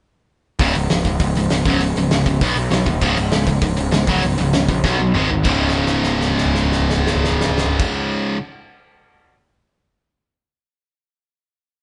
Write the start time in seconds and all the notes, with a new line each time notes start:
0.59 C#1 C#2 G#2 C#3, kick, open hi-hat
0.75 C#1 C#2 G#2, open hi-hat
0.90 C#1 C#2 G#2, snare, open hi-hat
1.05 C#1 C#2 G#2, kick, open hi-hat
1.20 C#1 C#2 G#2, kick, open hi-hat
1.35 C#1 C#2 G#2, open hi-hat
1.50 C#1 C#2 G#2, snare, open hi-hat
1.65 C#1 F#2 C#3 F#3, kick, open hi-hat
1.80 C#1 F#2 C#3, open hi-hat
1.96 C#1 F#2 C#3, open hi-hat
2.11 C#1 F#2 C#3, snare, open hi-hat
2.26 C#1 F#2 C#3, kick, open hi-hat
2.41 B1 B2 F#3 B3, kick, open hi-hat
2.56 B1 B2 F#3, open hi-hat
2.71 B1 B2 F#3, snare, open hi-hat
2.86 D#1 B2 F#3, kick, open hi-hat
3.01 C#1 C#2 G#2 C#3, kick, crash
3.17 C#1 C#2 G#2, open hi-hat
3.31 C#1 C#2 G#2, snare, open hi-hat
3.47 C#1 C#2 G#2, kick, open hi-hat
3.61 C#1 C#2 G#2, kick, open hi-hat
3.77 C#1 C#2 G#2, open hi-hat
3.92 C#1 C#2 G#2, snare, open hi-hat
4.07 C#1 F#2 C#3 F#3, kick, open hi-hat
4.22 C#1 F#2 C#3, open hi-hat
4.38 C#1 F#2 C#3, open hi-hat
4.53 C#1 F#2 C#3, snare, open hi-hat
4.68 A#1 F#2 C#3, kick, open hi-hat
4.83 B1 B2 F#3 B3, kick, snare
4.99 B1 B2 F#3
5.14 G#1 G#2 D#3 G#3, mid tom
5.30 G#1 G#2 D#3, floor tom
5.44 C#1 C#2 G#2 C#3, kick, crash
5.60 floor tom
5.69 snare
5.77 floor tom
5.86 snare
5.94 floor tom
6.03 snare
6.11 floor tom
6.21 snare
6.29 floor tom
6.38 snare
6.45 floor tom
6.55 snare
6.63 floor tom
6.72 snare
6.80 floor tom
6.90 snare
6.97 floor tom
7.07 snare
7.15 floor tom
7.24 snare
7.32 floor tom
7.41 snare
7.49 floor tom
7.58 snare
7.66 floor tom
7.79 kick, crash